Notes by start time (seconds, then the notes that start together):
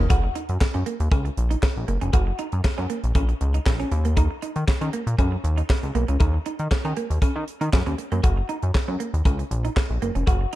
0.10 F#1 F#4, kick, closed hi-hat, cowbell
0.24 muted clean electric guitar stroke
0.35 D#4, closed hi-hat
0.49 F#2, closed hi-hat
0.61 F#2, muted clean electric guitar stroke, kick, snare, clap, cowbell
0.74 F#2 C#4, closed hi-hat
0.86 A#3, closed hi-hat
1.00 D#2, closed hi-hat
1.12 C#2 C#4, kick, closed hi-hat, cowbell
1.25 muted clean electric guitar stroke, closed hi-hat
1.37 A#1, closed hi-hat
1.50 D#4, closed hi-hat
1.62 muted clean electric guitar stroke, kick, snare, clap, cowbell
1.77 A#1
1.88 F#1 A#3, closed hi-hat
2.01 F1 C#4, closed hi-hat
2.13 F#1 F#4, kick, closed hi-hat, cowbell
2.27 muted clean electric guitar stroke
2.39 D#4, closed hi-hat
2.52 F#2, closed hi-hat
2.64 F#2, muted clean electric guitar stroke, kick, snare, clap, cowbell
2.78 F#2 C#4, closed hi-hat
2.90 A#3, closed hi-hat
3.04 A#1, closed hi-hat
3.15 A#1 C#4, kick, closed hi-hat, cowbell
3.29 muted clean electric guitar stroke, closed hi-hat
3.41 C#2, closed hi-hat
3.54 D#4, closed hi-hat
3.66 A#1, kick, snare, clap, cowbell
3.80 C#4, closed hi-hat
3.92 D#2, muted clean electric guitar stroke, closed hi-hat
4.05 A#3, closed hi-hat
4.17 D#4, kick, closed hi-hat, cowbell
4.31 muted clean electric guitar stroke
4.42 D#4, closed hi-hat
4.56 D#3, closed hi-hat
4.67 D#3, muted clean electric guitar stroke, kick, snare, clap, cowbell
4.81 D#3 C#4, closed hi-hat
4.93 A#3, closed hi-hat
5.07 A#2, closed hi-hat
5.19 F#2 C#4, kick, closed hi-hat, cowbell
5.32 muted clean electric guitar stroke
5.44 D#2, closed hi-hat
5.57 D#4, closed hi-hat
5.69 muted clean electric guitar stroke, kick, snare, clap, cowbell
5.83 C#2, closed hi-hat
5.95 B1 A#3, closed hi-hat
6.08 C#2 C#4, closed hi-hat
6.20 D#2 D#4, kick, closed hi-hat, cowbell
6.34 muted clean electric guitar stroke
6.46 D#4, closed hi-hat
6.59 D#3, closed hi-hat
6.71 D#3, muted clean electric guitar stroke, kick, snare, clap, cowbell
6.85 D#3 C#4, closed hi-hat
6.97 A#3, closed hi-hat
7.10 D#2, closed hi-hat
7.22 C#4, kick, closed hi-hat, cowbell
7.36 D#3, muted clean electric guitar stroke
7.48 closed hi-hat
7.61 D#3 D#4, closed hi-hat
7.73 F#2, kick, snare, clap, cowbell
7.86 D#2 C#4, closed hi-hat
7.98 muted clean electric guitar stroke, closed hi-hat
8.12 F#2 A#3, closed hi-hat
8.23 F#1 F#4, kick, closed hi-hat, cowbell
8.37 muted clean electric guitar stroke
8.49 D#4, closed hi-hat
8.63 F#2, closed hi-hat
8.74 F#2, muted clean electric guitar stroke, kick, snare, clap, cowbell
8.88 F#2 C#4
9.00 A#3, closed hi-hat
9.14 D#2, closed hi-hat
9.25 C#2 C#4, kick, closed hi-hat, cowbell
9.39 muted clean electric guitar stroke, closed hi-hat
9.51 A#1, closed hi-hat
9.65 D#4, closed hi-hat
9.76 muted clean electric guitar stroke, kick, snare, clap, cowbell
9.90 A#1
10.02 F#1 A#3, closed hi-hat
10.15 F1 C#4, closed hi-hat
10.27 F#1 F#4, kick, closed hi-hat, cowbell
10.41 muted clean electric guitar stroke